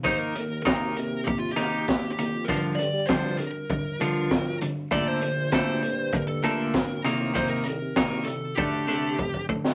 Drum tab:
HH |--x---x---x---x-|--x---x---x---x-|--x---x---x---x-|--x---x---x-----|
SD |----o-----o-o---|----o-------o---|----o-------o---|----o----------o|
BD |o---o---o---o---|o---o---o---o---|o---o---o---o---|o---o---o---ooo-|